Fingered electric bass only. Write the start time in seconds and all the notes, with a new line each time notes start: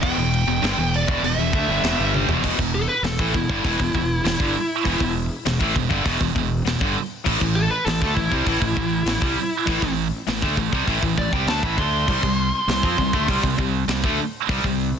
0.02 E1
0.17 E1
0.47 E1
0.63 G1
0.78 E1
1.08 E1
1.23 E1
1.38 E1
1.53 D2
1.69 G1
1.84 E1
1.98 G1
2.28 E1
2.44 E1
2.58 E1
3.02 E1
3.19 A1
3.34 E1
3.49 G1
3.64 E1
3.80 E1
3.94 E1
4.25 E1
4.40 G1
4.85 E1
5.00 E1
5.46 E1
5.60 A1
5.75 E1
5.90 G1
6.05 E1
6.21 E1
6.35 E1
6.66 E1
6.80 G1
7.26 A1
7.41 A1
7.86 A1
8.01 D2
8.16 A1
8.32 C2
8.46 A1
8.61 A1
8.77 A1
9.06 A1
9.21 C2
9.67 A1
9.82 A1
10.28 A1
10.43 D2
10.57 A1
10.72 C2
10.87 A1
11.03 A1
11.18 A1
11.32 C2
11.47 D2
11.63 A1
11.78 D2
12.08 C2
12.23 C2
12.68 C2
12.83 F2
12.98 C2
13.13 D2
13.28 C2
13.43 C2
13.58 C2
13.88 C2
14.04 D2
14.49 C2
14.64 C2